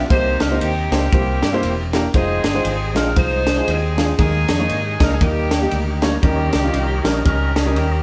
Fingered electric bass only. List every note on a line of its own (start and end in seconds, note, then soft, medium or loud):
0.10 0.36 C2 loud
0.40 0.58 C#2 medium
0.61 0.87 D#2 medium
0.91 1.09 C#2 loud
1.13 1.38 C2 loud
1.42 1.65 G2 medium
1.63 2.07 E1 medium
2.14 2.40 F1 loud
2.44 2.62 G1 medium
2.65 2.95 G#1 loud
2.95 3.13 A#1 loud
3.16 3.60 C2 medium
3.68 4.11 D#2 loud
4.19 4.45 D#2 loud
4.49 4.67 F2 medium
4.70 4.96 G#2 loud
5.00 5.18 C#2 loud
5.21 5.65 D#2 loud
5.72 6.16 D2 medium
6.23 6.49 D#2 loud
6.54 6.72 C#2 medium
6.74 7.00 C2 loud
7.04 7.22 A#1 medium
7.25 7.77 C#2 medium
7.77 8.03 D#2 medium